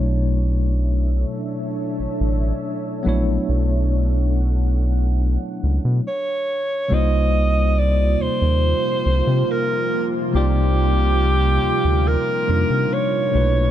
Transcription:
Already playing: B1 B2 F#3 A3 D4 E4 C#5
0.06 D4 A4 C#5 E5
1.99 A1
2.20 A1
3.03 A#1 F#3 A3 B3 D4
3.07 E4 C#5
3.48 B1 F#5
5.63 C#2
5.85 B2
6.08 C#5
6.88 C2 C3 F3 G3 A#3 D#4 F4
6.93 F4 C5 D#5
7.79 D5
8.20 D#2 C5
8.42 D#2
9.06 C2
9.27 C3
9.51 A#4
10.31 C2 C3 G3 A#3 D#4
10.36 F4 G4 D5
11.63 D2
11.85 D2
12.08 A#4
12.47 F2 C3 G3 A#3 D4 D#4 F4
12.70 C3
12.93 C#5
13.31 B1 B2 A3 B3 D4 E4
13.35 E4 B4

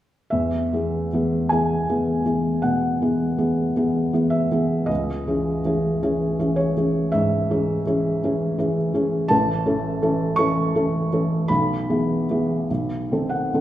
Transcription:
0.30 E2 E5
0.73 E3 B3 G#4
1.13 E3 B3 G#4
1.49 E3 B3 G#4 G#5
1.89 E3 B3 G#4
2.25 E3 B3 G#4
2.62 B2 F#5
3.02 E3 B3 G#4
3.38 E3 B3 G#4
3.76 E3 B3 G#4
4.13 E3 B3 G#4
4.30 E5
4.51 E3 B3 G#4
4.86 C#2 D#5
5.27 E3 C#4 G#4
5.65 E3 C#4 G#4
6.03 E3 C#4 G#4
6.39 E3 C#4 G#4
6.56 C#5
6.77 E3 C#4 G#4
7.12 G#2 E5
7.50 E3 C#4 G#4
7.87 E3 C#4 G#4
8.24 E3 C#4 G#4
8.58 E3 C#4 G#4
8.94 E3 C#4 G#4
9.28 A1 A5
9.66 E3 C#4 A4
10.02 E3 C#4 A4
10.36 E3 C#4 A4 C#6
10.75 E3 C#4 A4
11.12 E3 C#4 A4
11.48 B1 B5
11.90 E3 B3 G#4
12.31 E3 B3 G#4
12.71 B1
13.12 D#3 C4 A4
13.29 F#5
13.54 D#3 C4 A4

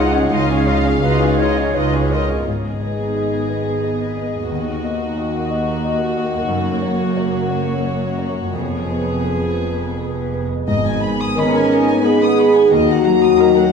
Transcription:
Already playing: C#2 C#3 G#3 C#4 D#4 F4 F#4 G#4 C#5 D#5 F#5
0.12 C#4 F4 G#4 C#5 D#5
0.30 C#2 C#3 D#4 F4 D#5 F5
0.49 C#4 F4 G#4 C#5
0.67 G#3 D#4 F4 C#5 D#5
0.85 C#4 F4 G#4 C#5
1.02 C#2 D#4 F4 F#4 B4 D#5
1.20 C#4 F4 G#4 C#5
1.38 D#4 F4 C#5 D#5
1.56 C#4 F4 G#4 C#5 D#5
1.75 C#2 G#3 D#4 F4 B4 C#5 D#5
1.93 C#4 F4 G#4 C#5
2.11 C#4 D#4 F4 A#4 C#5 D#5
2.29 C#4 F4 G#4 C#5 D#5
2.46 G#1 G#2 B3 G#4 D#5
2.71 G#3
2.81 B3 D#5
2.93 D#4
3.15 G#4 B4 D#5
3.38 G#4
3.49 B3 D#5
3.61 D#5
3.83 G#4 D#5
4.06 B4
4.17 B3 D#5
4.27 G#3
4.49 D#2 D#3 F#4
4.72 D#4
4.84 A#3 D#5
4.95 A#4
5.16 A#3 F#4 D#5
5.40 D#5
5.50 A#3 D#5
5.62 A#5
5.84 F#4 D#5
6.06 F#4
6.17 A#3 D#5
6.28 D#4
6.48 F#1 F#2 C#5
6.73 F#3
6.82 A#3 C#5
6.95 C#4
7.16 F#4 A#4 C#5
7.39 F#4
7.50 A#3 C#5
7.62 C#5
7.84 F#4 C#5
8.08 A#4
8.18 A#3 C#5
8.30 F#3
8.53 F1 F2 B3 G#4
8.78 G#3
8.90 B3 B4
9.01 B3
9.25 G#4 B4
9.48 G#4
9.61 B3 B4
9.73 B4
9.97 G#4 B4
10.20 B4
10.33 B3 B4
10.45 G#3
10.67 G#1 G#2 B3 D#5 G#5
10.85 G#5
11.02 G#3 B5
11.20 D#6
11.36 D#3 B3 C#4 G#4 A#4 D#5 B5
11.55 G#5
11.70 D#4 D#5
11.88 G#5
12.04 B3 G#4 B4 D#5 B5
12.21 D#6
12.38 D#4 B5
12.55 G#5
12.71 D#2 D#3 A#3 F#4 D#5 A#5
12.90 F#5
13.05 F#3 D#4 A#5
13.23 D#6
13.39 A#3 A#4 D#5 A#5
13.56 F#5

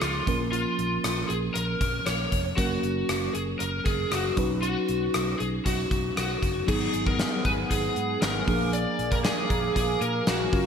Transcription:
Already playing: F3 G#3 C#4 G#4
0.01 C#2 F4, cross-stick, closed hi-hat
0.26 A#1 F3 A#3 C#4 A#4, kick, closed hi-hat
0.52 F4, closed hi-hat
0.79 A#1, closed hi-hat
1.04 A#1, cross-stick, closed hi-hat
1.28 A#1 G#4, closed hi-hat
1.54 A#1 A#4, closed hi-hat
1.81 A#1, kick, closed hi-hat
2.06 A#1 C#5, cross-stick, closed hi-hat
2.32 F1, kick, closed hi-hat
2.57 F#1 F#3 A#3 C#4 F#4 A#4, kick, closed hi-hat
2.83 F#1, closed hi-hat
3.09 F#1, cross-stick, closed hi-hat
3.33 F#1 G#4, closed hi-hat
3.59 F#1 A#4, closed hi-hat
3.85 F#1 G#4, kick, closed hi-hat
4.11 F#1 F#4, cross-stick, closed hi-hat
4.36 B1 F#3 C#4 D#4 B4, kick, closed hi-hat
4.62 F#4, closed hi-hat
4.88 B1, closed hi-hat
5.14 B1, cross-stick, closed hi-hat
5.39 B1 G#4, closed hi-hat
5.66 B1 F#4, kick, closed hi-hat
5.91 B1, kick, closed hi-hat
6.17 B1 F#4, cross-stick, closed hi-hat
6.43 F#1, kick, closed hi-hat
6.67 G#1 F#3 B3 D#4 G#4 F#5 G#5 D#6, kick, crash
6.94 G#1, closed hi-hat
7.07 A#4, kick
7.19 snare, closed hi-hat
7.45 G#1 B4, kick, closed hi-hat
7.71 G#1 G#4, kick, closed hi-hat
7.96 G#2, closed hi-hat
8.21 G#1 A#4, snare, closed hi-hat
8.46 A#1 F3 A#3 D4 G#4 A#4 F5 G#5 D6, kick, open hi-hat
8.73 D5, closed hi-hat
8.99 A#1, closed hi-hat
9.12 A#4, kick, closed hi-hat
9.24 G#4, snare, closed hi-hat
9.50 A#1, kick, closed hi-hat
9.76 A#1 G#4, kick, closed hi-hat
10.01 A#2 A#4, closed hi-hat
10.27 A#1 F#4, snare, closed hi-hat
10.52 F#1 F#3 C#4 F4 A#4 A#5 C#6, kick, open hi-hat

